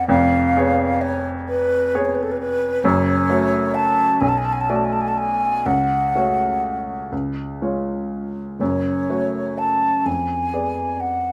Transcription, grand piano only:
Already playing: F2 B3 G#4 D5
0.08 F1 F2
0.57 B3 G#4 C#5
1.95 B3 G#4 C#5
2.84 F#1 F#2
3.29 A3 F#4 C#5
4.22 B1
4.69 A3 F#4 D5
5.66 C#2
6.15 A3 F#4 C#5
7.12 C#2
7.62 G#3 F4 C#5
8.60 F#1 F#2
9.10 A3 F#4 C#5
10.06 F2
10.53 B3 G#4 D5

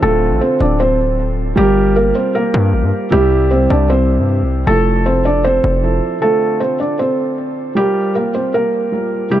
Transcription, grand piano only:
0.01 D3 C4 F4
1.56 G3 F4 A#4
3.10 C3 G3 E4
4.65 F3 E4 A4
5.82 F3 E4 A4
6.20 D3 C4 F4
7.75 G3 F4 A#4
8.92 G3 F4 A#4
9.30 C3 G3 E4

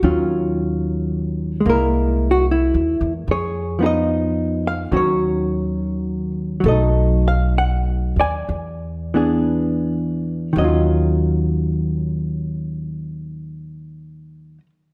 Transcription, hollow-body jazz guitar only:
0.03 D#3 F#3 C#4 F4
1.61 G#3
1.66 A#3 A#4
1.71 E4
2.31 F#4
2.51 E4
3.31 G#4 C#5
3.79 F3 B3 D#4
3.84 G#4 D#5
4.67 F5
4.92 D#3 F#3 C#4 F#4
4.97 C#5
6.60 F#3
6.66 A3 A4 D#5
6.71 D#4
7.28 F5
7.58 F#5
8.20 D5 G#5
9.14 E3 B3 D4 G#4
10.53 D#3
10.57 F#3 C#4 D#5
10.64 F4

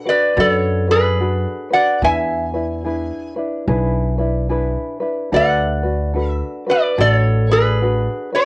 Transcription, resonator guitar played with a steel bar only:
Already playing: F#5
0.09 B4 D5
0.40 A4 D5
0.53 C#5
0.91 G#4 B4
1.73 D5 F#5
2.04 E5 G#5
5.34 D5 F#5
6.29 E5
6.70 B4 D5
7.00 A4 D5
7.14 C#5
7.51 G#4 B4
8.35 C#5 E5

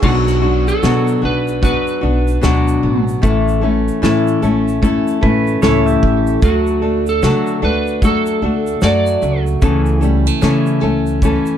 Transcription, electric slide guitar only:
0.04 F#4
0.68 A4
1.25 B4
1.65 B4
2.45 D4
6.45 F#4
7.09 A4
7.65 B4
8.05 A4
8.84 D5

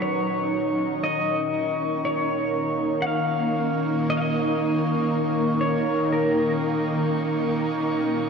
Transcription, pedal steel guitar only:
0.02 C#5
1.03 D#5
2.05 C#5
3.02 F#5
3.07 F5
4.10 D#5
4.17 F5
4.21 D#5
5.61 C#5
6.13 A#4

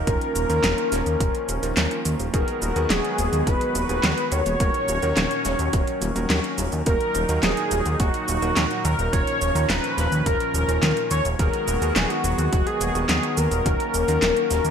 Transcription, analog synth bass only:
0.07 D#1
0.36 D#1
0.50 D#2
0.64 D#1
0.92 D#1
1.06 D#2
1.20 D#1
1.49 D#1
1.63 D#1
1.77 D#2
2.05 D#2
2.20 D#1
2.34 D#1
2.62 D#1
2.76 D#2
2.90 D#1
3.18 D#1
3.33 D#2
3.47 D#1
3.75 D#1
3.89 D#1
4.03 D#2
4.32 D#2
4.46 D#1
4.60 D#1
4.89 D#1
5.03 D#2
5.17 D#1
5.45 D#1
5.59 D#2
5.73 D#1
6.01 D#1
6.16 D#1
6.30 D#2
6.58 D#1
6.72 D#2
6.87 D#1
7.15 D#1
7.29 D#2
7.43 D#1
7.72 D#1
7.86 D#2
8.00 D#1
8.28 D#1
8.42 D#1
8.57 D#2
8.85 D#2
8.99 D#1
9.13 D#1
9.41 D#1
9.55 D#2
9.70 D#1
9.98 D#1
10.12 D#2
10.26 D#1
10.54 D#1
10.69 D#1
10.83 D#2
11.11 D#2
11.25 D#1
11.39 D#1
11.68 D#1
11.82 D#2
11.96 D#1
12.24 D#1
12.38 D#2
12.53 D#1
12.81 D#1
12.95 D#1
13.09 D#2
13.37 D#2
13.51 D#1
13.66 D#1
13.94 D#1
14.08 D#2
14.22 D#1
14.51 D#1
14.65 D#2

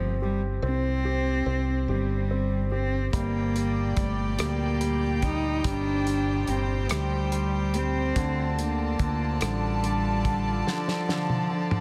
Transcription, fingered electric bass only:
Already playing: G1
0.62 C2
1.46 C2
1.88 G1
3.13 G1
3.97 G1
4.39 D2
5.64 G1
6.48 G1
6.90 D2
8.16 D2
8.99 D2
9.41 A1

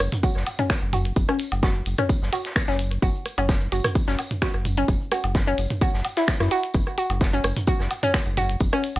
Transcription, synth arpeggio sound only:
0.23 F#4
0.59 C#4
0.93 F#4
1.29 C#4
1.63 F#4
1.98 C#4
2.33 F#4
2.68 C#4
3.02 F#4
3.38 C#4
3.72 F#4
4.08 C#4
4.42 F#4
4.78 C#4
5.12 F#4
5.47 C#4
5.82 F#4
6.17 E4
6.40 E4
6.51 F#4
6.98 F#4
7.33 C#4
7.68 F#4
8.03 C#4
8.37 F#4
8.73 C#4

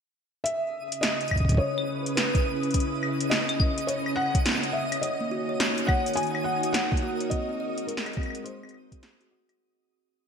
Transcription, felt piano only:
0.44 E5
1.01 D#5
1.58 C#5
2.15 B4
3.30 D#5
3.87 C#5
4.16 F#5
4.73 E5
5.01 D#5
5.87 F#5
6.16 G#5
6.44 F#5
6.73 F#5
7.30 D#5
7.87 A#4
8.44 C5

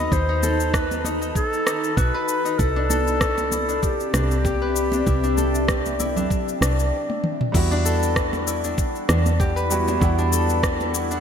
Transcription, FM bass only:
0.12 D#2
1.97 B1
2.59 C2
4.14 C2
5.07 C2
6.61 C2
7.54 E2
9.09 E2
10.02 E2

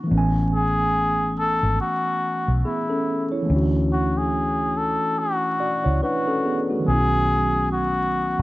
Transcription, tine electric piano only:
0.04 E3 A3
0.11 B3 C#4
0.18 G#5
2.65 B3 G#4
2.90 C#4 A4
3.32 E4 C#5
3.42 E3 A3
3.49 C#4 D4
3.56 F#4
5.60 F#4 D5
5.84 E4 C#5
6.03 D4 B4
6.27 C#4 A4
6.45 B3 G#4
6.70 A3 F#4
6.80 D#3 F#3
6.87 B3 C#4
6.94 E4
7.00 F#4

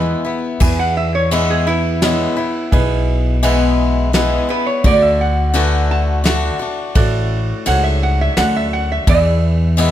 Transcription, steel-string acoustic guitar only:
Already playing: E3 G#3 B3 E4
0.25 B3 E4
0.60 E2
1.31 E3 G#3 B3 E4
1.67 B3 E4
2.02 E3 G#3 B3 E4
2.37 B3 E4
2.73 B2
3.43 E3 G#3 B3 E4
4.13 E3 G#3 B3 E4
4.49 B3 E4
4.84 D3
5.54 D3 A3 D4 F#4
6.24 D3 A3 D4 F#4
6.59 D4 F#4
6.95 A2
7.66 G#2
8.37 F#2
9.08 E2
9.77 E3 G#3 B3 E4

